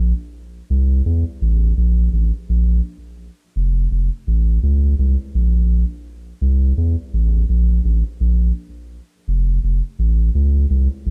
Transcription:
0.00 0.13 A#1 medium
0.70 1.02 C2 loud
1.06 1.24 E2 medium
1.42 1.73 A1 loud
1.77 2.09 A#1 loud
2.13 2.31 A1 medium
2.49 2.81 A#1 medium
3.56 3.88 F1 medium
3.91 4.10 F1 medium
4.27 4.59 A1 medium
4.63 4.95 C#2 loud
4.99 5.17 C2 loud
5.35 5.85 A#1 medium
6.41 6.73 C2 loud
6.78 6.96 E2 medium
7.14 7.45 A1 medium
7.49 7.80 A#1 loud
7.85 8.03 A1 loud
8.20 8.52 A#1 medium
9.28 9.59 F1 loud
9.64 9.81 F1 loud
9.99 10.30 A1 medium
10.35 10.66 C#2 loud
10.70 10.88 C2 loud
11.06 11.10 A#1 medium

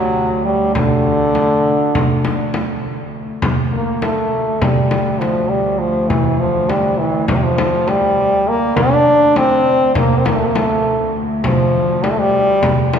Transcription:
0.00 3.42 D2 medium
0.00 0.45 F#3 medium
0.18 darbuka ka soft
0.45 0.74 G3 medium
0.45 darbuka ka soft
0.75 2.79 D3 medium
0.75 frame drum medium
0.75 darbuka dum medium
1.06 darbuka ka soft
1.35 darbuka tek medium
1.35 frame drum medium
1.65 darbuka ka soft
1.95 frame drum medium
1.95 darbuka dum medium
2.10 darbuka ka soft
2.25 darbuka tek medium
2.25 frame drum medium
2.54 darbuka tek medium
2.54 frame drum medium
2.84 darbuka ka soft
3.14 darbuka ka soft
3.42 8.76 D2 medium
3.42 frame drum medium
3.42 darbuka dum medium
3.73 4.04 A#3 medium
4.02 4.63 A3 medium
4.02 darbuka tek medium
4.02 frame drum medium
4.62 5.21 G3 medium
4.62 frame drum medium
4.62 darbuka dum loud
4.77 darbuka ka soft
4.91 darbuka tek medium
4.91 frame drum medium
5.20 5.51 F3 medium
5.20 darbuka tek medium
5.20 frame drum medium
5.50 5.80 G3 medium
5.79 6.10 F3 medium
5.79 darbuka ka soft
6.09 6.41 E3 medium
6.09 frame drum medium
6.09 darbuka dum medium
6.40 6.71 F3 medium
6.69 7.00 G3 medium
6.69 darbuka tek medium
6.69 frame drum medium
6.99 7.28 E3 medium
7.28 7.37 F3 medium
7.28 frame drum medium
7.28 darbuka dum medium
7.36 7.45 G3 medium
7.43 7.90 F3 medium
7.43 darbuka ka soft
7.58 darbuka tek medium
7.58 frame drum medium
7.88 8.50 G3 loud
7.88 darbuka tek medium
7.88 frame drum medium
8.48 8.78 A#3 medium
8.48 darbuka ka soft
8.77 12.99 D2 medium
8.77 9.39 D4 loud
8.77 frame drum medium
8.77 darbuka dum medium
9.36 9.96 C4 medium
9.36 darbuka tek medium
9.36 frame drum medium
9.95 10.20 A#3 medium
9.95 frame drum medium
9.95 darbuka dum loud
10.19 10.28 C4 medium
10.25 10.37 A#3 medium
10.25 darbuka tek medium
10.25 frame drum medium
10.36 10.47 A3 medium
10.45 10.57 A#3 medium
10.55 11.15 A3 medium
10.55 darbuka tek medium
10.55 frame drum medium
11.15 darbuka ka soft
11.43 12.05 F3 medium
11.43 frame drum medium
11.43 darbuka dum loud
11.75 darbuka ka soft
12.03 12.13 G3 medium
12.03 darbuka tek medium
12.03 frame drum medium
12.11 12.20 A3 medium
12.19 12.94 G3 loud
12.34 darbuka ka soft
12.63 frame drum medium
12.63 darbuka dum loud
12.79 darbuka ka soft
12.93 darbuka tek medium
12.93 frame drum medium

